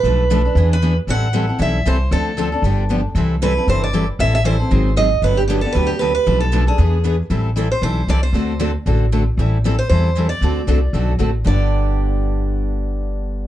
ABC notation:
X:1
M:4/4
L:1/8
Q:"Swing" 1/4=232
K:G
V:1 name="Steel-string acoustic guitar"
B4- B B2 z | f4 e2 c2 | A6 z2 | z2 B2 c d2 z |
e e c4 _e2 | B G G A B G B B- | B A2 _A4 z | z3 c c2 d c- |
c3 z4 z | z3 c c3 d- | d6 z2 | d8- |
d8 |]
V:2 name="Steel-string acoustic guitar"
[B,,=F,A,DA] z [B,,F,A,DA] [A,DA] [E,B,D^G] z [E,B,DG] z | [E,G,CEA] z [E,G,CEA] [CEA] [E,G,CEA] z [E,G,CEA] z | [D,=F,CDA] z [D,F,CDA] [CDA] [D,F,B,DG] z [D,F,B,DG] z | [C,E,G,CEA] z [C,E,G,CEA] [G,CEA] [C,E,G,CEA] z [C,E,G,CEA] z |
[E,G,CEA] z [E,G,CEA] [CEA] [_E,_G,C_E_A] z [E,G,CEA] z | [D,F,B,DG] z [D,F,B,DG] [B,DG] [D,F,B,DG] z [D,F,B,DG] z | [B,,=F,A,DA] z [B,,F,A,DA] [A,DA] [E,B,D^G] z [E,B,DG] z | [E,G,CEA] z [E,G,CEA] z [E,G,CEA] z [E,G,CEA] z |
[D,A,CFA] z [D,A,CFA] z [D,A,CFA] z [D,A,CFA] z | [E,G,CEA] z [E,G,CEA] z [E,G,CEA] z [E,G,CEA] z | [D,A,CFA] z [D,A,CFA] z [D,A,CFA] z [D,A,CFA] z | [G,,D,B,DG]8- |
[G,,D,B,DG]8 |]
V:3 name="Steel-string acoustic guitar"
[B,,=F,A,DAB] z [B,,F,A,DAB] z [E,B,D^GB] z [E,B,DGB] z | [E,G,CEA] z [E,G,CEA] z [E,G,CEA] z [E,G,CEA] z | [D,=F,CDA] z [D,F,CDA] z [D,F,B,DG] z [D,F,B,DG] z | [C,E,G,CEA] z [C,E,G,CEA] z [C,E,G,CEA] z [C,E,G,CEA] z |
[E,G,CEA] z [E,G,CEA] z [_E,_G,C_E_A] z [E,G,CEA] z | [D,F,B,DG] z [D,F,B,DG] z [D,F,B,DG] z [D,F,B,DG] z | [B,,=F,A,DAB] z [B,,F,A,DAB] z [E,B,D^GB] z [E,B,DGB] z | [E,G,CEA] z [E,G,CEA] z [E,G,CEA] z [E,G,CEA] z |
[D,A,CFA] z [D,A,CFA] z [D,A,CFA] z [D,A,CFA] z | [E,G,CEA] z [E,G,CEA] z [E,G,CEA] z [E,G,CEA] z | [D,A,CFA] z [D,A,CFA] z [D,A,CFA] z [D,A,CFA] z | [G,,D,B,DG]8- |
[G,,D,B,DG]8 |]
V:4 name="Upright bass" clef=bass
B,,,4 E,,4 | A,,,4 B,,,2 C,,2 | D,,4 G,,,4 | C,,4 G,,,4 |
A,,,4 _A,,,4 | G,,,4 D,,4 | B,,,4 E,,4 | A,,,4 B,,,2 C,,2 |
D,,4 A,,,4 | A,,,4 E,,4 | D,,2 C,,2 B,,,2 A,,,2 | G,,,8- |
G,,,8 |]